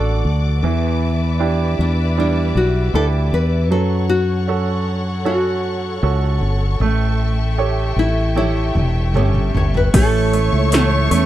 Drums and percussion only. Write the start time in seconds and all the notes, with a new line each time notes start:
8.36 high tom
8.75 mid tom
9.14 mid tom
9.34 mid tom
9.55 floor tom
9.74 floor tom
9.94 kick, open hi-hat, crash
10.33 open hi-hat
10.72 snare, open hi-hat
11.11 open hi-hat